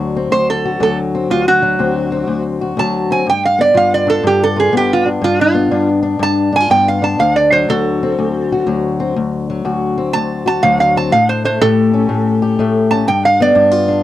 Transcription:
Already playing: D2 D3 F#3 D4 F#4
0.16 C4
0.31 D2 C5
0.50 A4
0.65 F#4
0.80 D2 F#3 A4
1.15 C4
1.30 D2 F4
1.48 F#4
1.62 F#3
1.79 D2 C4
2.12 C4
2.28 D2
2.61 F#4
2.77 D2 F#3 A5
3.11 C4 G#5
3.27 G2 G5
3.45 F5
3.59 B3 D5
3.74 G2 F4 F5
3.94 D5
4.07 D4 A4
4.23 G2 G4
4.44 A4
4.56 F4 G#4
4.72 G2 B3
4.77 G4
4.93 F4
5.05 D4
5.21 G2 F4
5.41 F4
5.55 B3
5.71 G2 D4
6.03 D4
6.19 G2 A5
6.52 D4 G#5
6.60 F4
6.70 G2 B3 G5
6.88 F5
7.02 D4 A5
7.19 D2 F5
7.36 D5
7.52 F#3 C5
7.69 D2 F#4 A4
8.03 C4
8.19 D2
8.52 F#4
8.67 D2 F#3
9.00 C4
9.16 D2
9.50 F#3
9.65 D2 F#4
9.98 C4
10.13 D2 A5
10.46 F#4 A5
10.63 D2 F#3 F5
10.80 F5
10.96 C4 A5
11.12 A2 F5
11.29 C5
11.45 A3 C5
11.61 A2 G4 A4
11.94 C#4
12.09 A2
12.42 G4
12.59 A2 A3
12.91 C#4 A5
13.07 G2 G5
13.25 F5
13.40 B3 D5
13.55 G2 D4
13.71 F4
13.88 D4

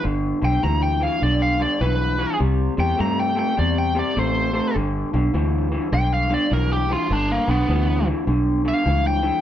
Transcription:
0.04 G1 G2 D3
0.42 B1 G2 D3 G5
0.63 D2 G2 E3 A#5
0.82 G5
1.00 G2 E3 F5
1.21 B1 G2 D3 D5
1.42 F5
1.59 G2 D3 D5
1.81 B1 G2 E3 B4
2.19 G2 E3
2.40 C2 C3 G3
2.77 E2 C3 G3 G5
2.98 G2 C3 A3 A#5
3.20 G5
3.35 C3 A3 G5
3.57 E2 C3 G3 D5
3.78 G5
3.95 C3 G3 D5
4.16 A1 C3 A3 C5
4.53 C3 A3
4.75 G1 G2 D3
5.13 B1 G2 D3
5.34 D2 G2 E3
5.72 G2 E3
5.92 B1 G2 D3 G5
6.14 F5
6.30 G2 D3
6.34 D5
6.50 B1 G2 E3 A#4
6.73 G4
6.89 G2 E3 F4
7.10 G1 G2 D3 D4
7.32 A#3
7.48 B1 G2 D3 B3
7.68 D2 G2 E3
8.07 G2 E3
8.27 B1 G2 D3
8.65 G2 D3 F5
8.85 C#2 G2 E3
9.07 G5
9.23 G2 E3

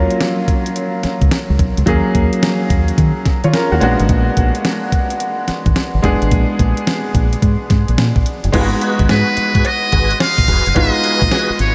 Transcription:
Already playing: F#3 A#3 C#4 F4
0.11 closed hi-hat
0.21 snare, closed hi-hat
0.48 kick, closed hi-hat
0.66 closed hi-hat
0.76 closed hi-hat
1.03 muted fingered electric bass stroke, snare, closed hi-hat
1.21 C#2, kick, closed hi-hat
1.31 snare, closed hi-hat
1.50 C#2
1.59 B1, kick, closed hi-hat
1.77 C#2, closed hi-hat
1.86 D#2 F#3 A#3 C#4 G#4, kick, closed hi-hat
2.15 D#2, kick, closed hi-hat
2.33 closed hi-hat
2.43 snare, closed hi-hat
2.70 D#2, kick, closed hi-hat
2.88 closed hi-hat
2.98 D#3, kick, closed hi-hat
3.25 muted fingered electric bass stroke, kick, snare, closed hi-hat
3.44 D#3 F4 C#5, closed hi-hat
3.54 C#4 A#4, snare, closed hi-hat
3.72 D#2 A#3 F#4
3.80 A#1 G#3 B3 D4 F#4, closed hi-hat
4.00 G#1, closed hi-hat
4.09 A#1, kick, closed hi-hat
4.37 A#1, kick, closed hi-hat
4.55 closed hi-hat
4.65 snare, closed hi-hat
4.92 kick, closed hi-hat
5.10 closed hi-hat
5.20 closed hi-hat
5.48 muted fingered electric bass stroke, snare, closed hi-hat
5.66 G#1, kick, closed hi-hat
5.76 snare, closed hi-hat
5.95 G#1
6.02 F#1 G#3 B3 D4 G#4, kick, closed hi-hat
6.22 G#1, closed hi-hat
6.31 A#1, kick, closed hi-hat
6.59 A#1, kick, closed hi-hat
6.77 closed hi-hat
6.87 snare, closed hi-hat
7.15 A#1, kick, closed hi-hat
7.33 closed hi-hat
7.42 G#2, kick, closed hi-hat
7.70 G#2, kick, snare, closed hi-hat
7.88 A#1, closed hi-hat
7.98 A#2, snare, closed hi-hat
8.16 A#1, kick
8.26 closed hi-hat
8.44 F#1, closed hi-hat
8.52 G#1 G#3 B3 D#4 F4 F#4 G#4 B4, kick, closed hi-hat, crash, cowbell
8.61 F#4
8.81 F#4 G#4 B4, closed hi-hat
8.99 G#1, kick, closed hi-hat
9.09 G#2 F#4 G#4 B4, snare, closed hi-hat, cowbell
9.37 muted fingered electric bass stroke, closed hi-hat
9.55 G#2 F#4 G#4 B4, kick, closed hi-hat
9.65 D#5, closed hi-hat, cowbell
9.92 G#1 F#4 G#4 B4, kick, closed hi-hat
10.11 closed hi-hat
10.20 F5, snare, closed hi-hat, cowbell
10.38 A#1, kick
10.48 F1 F#4 G#4 B4, kick, closed hi-hat
10.66 F#1, closed hi-hat
10.75 G#1 G#3 B3 D#4 F4 F#4 G#4 B4 D#5, kick, closed hi-hat, cowbell
11.03 F#4 G#4 B4, closed hi-hat
11.22 A#1, kick, closed hi-hat
11.31 F#4 G#4 B4, snare, closed hi-hat, cowbell
11.50 muted fingered electric bass stroke
11.59 G#1 C#5, closed hi-hat

